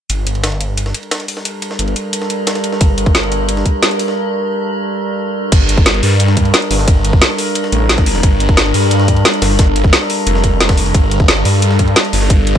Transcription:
0.10 G1 G3 D4 A4 A#4, closed hi-hat, ride
0.27 closed hi-hat, ride
0.35 ride
0.44 snare, closed hi-hat, ride
0.52 ride
0.61 closed hi-hat, ride
0.77 closed hi-hat, ride
0.86 snare
0.94 closed hi-hat, ride
1.03 ride
1.11 snare, closed hi-hat, ride
1.20 closed hi-hat
1.28 closed hi-hat, open hi-hat
1.37 snare
1.45 closed hi-hat, ride
1.62 closed hi-hat, ride
1.71 snare
1.79 G1, closed hi-hat, ride
1.88 ride
1.96 closed hi-hat, ride
2.13 closed hi-hat, ride
2.22 snare
2.30 closed hi-hat, ride
2.47 snare, closed hi-hat, ride
2.55 snare, closed hi-hat
2.64 closed hi-hat, ride
2.72 snare
2.81 G1, kick, closed hi-hat, ride
2.98 closed hi-hat, ride
3.06 kick, ride
3.15 snare, closed hi-hat, ride
3.23 ride
3.32 closed hi-hat, ride
3.49 closed hi-hat, ride
3.57 snare
3.66 kick, closed hi-hat
3.83 snare, closed hi-hat, ride
3.91 closed hi-hat
3.99 closed hi-hat, open hi-hat
4.08 snare
5.52 G1 G3 D4 A4 A#4, kick, closed hi-hat, ride, crash
5.69 closed hi-hat, ride
5.78 kick, ride
5.86 snare, closed hi-hat, ride
5.94 ride
6.03 G2, open hi-hat, ride
6.20 closed hi-hat, ride
6.28 snare
6.37 kick, closed hi-hat, ride
6.45 ride
6.54 snare, closed hi-hat, ride
6.62 closed hi-hat
6.71 G1, open hi-hat
6.79 snare
6.88 kick, closed hi-hat, ride
7.05 closed hi-hat, ride
7.13 kick
7.22 snare, closed hi-hat, ride
7.30 snare
7.38 open hi-hat, ride
7.55 closed hi-hat, ride
7.64 snare
7.72 A1, closed hi-hat, ride
7.89 snare, closed hi-hat, ride
7.98 kick, snare, closed hi-hat
8.06 open hi-hat, ride
8.15 snare
8.23 G1, kick, closed hi-hat, ride
8.40 closed hi-hat, ride
8.49 kick, ride
8.57 snare, closed hi-hat, ride
8.66 ride
8.74 G2, open hi-hat, ride
8.91 closed hi-hat, ride
9.00 snare
9.08 kick, closed hi-hat, ride
9.17 ride
9.25 snare, closed hi-hat, ride
9.34 closed hi-hat
9.42 G1, snare, open hi-hat, ride
9.50 snare
9.59 kick, snare, closed hi-hat, ride
9.76 closed hi-hat, ride
9.84 kick
9.93 snare, closed hi-hat, ride
10.01 snare
10.10 open hi-hat, ride
10.27 F1, closed hi-hat, ride
10.35 snare
10.44 kick, closed hi-hat, ride
10.61 snare, closed hi-hat, ride
10.69 kick, snare, closed hi-hat, ride
10.78 open hi-hat, ride
10.86 ride
10.94 G1 D5, kick, closed hi-hat, ride
11.11 closed hi-hat, ride
11.20 kick, ride
11.28 snare, closed hi-hat, ride
11.37 ride
11.45 G2, open hi-hat, ride
11.62 closed hi-hat, ride
11.71 snare
11.79 kick, closed hi-hat, ride
11.88 ride
11.96 snare, closed hi-hat, ride
12.05 closed hi-hat
12.13 G1, open hi-hat
12.22 snare
12.30 kick, closed hi-hat, ride
12.47 closed hi-hat, ride

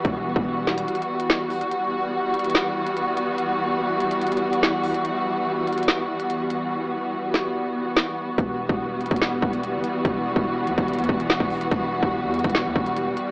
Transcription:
Already playing: E3 G3 B3 F#4
0.05 E1, kick, closed hi-hat
0.26 D#1
0.36 E1, kick
0.67 snare, closed hi-hat
0.78 closed hi-hat
0.88 closed hi-hat
0.95 closed hi-hat
1.02 closed hi-hat
1.20 closed hi-hat
1.30 snare
1.50 open hi-hat
1.61 closed hi-hat
1.71 E3 B3, closed hi-hat
2.34 closed hi-hat
2.39 closed hi-hat
2.44 closed hi-hat
2.50 closed hi-hat
2.55 snare
2.87 closed hi-hat
2.97 closed hi-hat
3.17 closed hi-hat
3.38 closed hi-hat
4.00 closed hi-hat
4.11 closed hi-hat
4.22 closed hi-hat
4.27 closed hi-hat
4.32 closed hi-hat
4.37 closed hi-hat
4.53 closed hi-hat
4.63 snare
4.84 open hi-hat
4.94 closed hi-hat
5.05 B3, closed hi-hat
5.67 closed hi-hat
5.73 closed hi-hat
5.78 closed hi-hat
5.83 closed hi-hat
5.88 snare
6.20 closed hi-hat
6.30 closed hi-hat
6.50 closed hi-hat
7.34 snare
7.97 snare
8.38 E1 E3 G3 F#4, kick, closed hi-hat
8.69 E1, kick
9.01 closed hi-hat
9.06 closed hi-hat
9.11 E1, kick, closed hi-hat
9.16 closed hi-hat
9.22 snare
9.42 E1, kick
9.53 closed hi-hat
9.63 closed hi-hat
9.74 G1
9.84 closed hi-hat
10.05 E1, kick, closed hi-hat
10.36 E1, kick
10.67 E2, closed hi-hat
10.78 E1, kick, closed hi-hat
10.88 closed hi-hat
10.93 closed hi-hat
10.99 E2, closed hi-hat
11.04 closed hi-hat
11.09 E1, kick
11.20 closed hi-hat
11.30 snare
11.40 E1, kick
11.50 open hi-hat
11.61 closed hi-hat
11.71 E1 G3, kick, closed hi-hat
12.03 E1, kick
12.23 E2
12.34 closed hi-hat
12.39 closed hi-hat
12.44 E1, kick, closed hi-hat
12.50 closed hi-hat
12.55 snare
12.65 E2
12.76 E1, kick
12.86 closed hi-hat
12.97 closed hi-hat
13.17 closed hi-hat

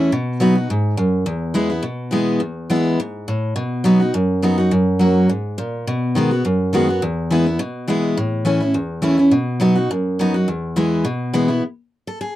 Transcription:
Already playing: E3 A3 C#4 E4
0.12 B2
0.40 F#3 B3 D#4 F#4
0.55 D#4 F#4
0.70 G#2
0.97 F#2
1.26 E2
1.54 E3 G#3 B3 E4
1.70 B3 E4
1.83 B2
2.11 E3 G#3 B3 E4
2.40 E2
2.70 E3 G#3 B3 E4
3.00 G#2
3.28 A2
3.56 B2
3.84 F#3 B3 D#4 F#4
4.00 D#4 F#4
4.14 F#2
4.42 F#3 B3 D#4 F#4
4.58 D#4 F#4
4.71 F#2
4.99 F#3 A#3 C#4 F#4
5.29 G#2
5.58 A#2
5.87 B2
6.15 D#3 G#3 B3 F#4
6.31 B3 F#4
6.45 F#2
6.73 D#3 G#3 B3 F#4
6.88 B3 F#4
7.02 E2
7.31 E3 G#3 B3 E4
7.46 B3 E4
7.59 B2
7.88 E3 G#3 B3 E4
8.17 A2
8.45 E3 A3 C#4 E4
8.60 C#4 E4
8.74 E2
9.02 E3 A3 C#4 E4
9.18 C#4 E4
9.31 B2
9.60 F#3 B3 D#4 F#4
9.75 D#4 F#4
9.91 F#2
10.19 F#3 B3 D#4 F#4
10.34 D#4 F#4
10.48 E2
10.76 E3 G#3 B3 E4
11.05 B2
11.33 E3 G#3 B3 E4
11.48 B3 E4
12.07 A4
12.21 G#4

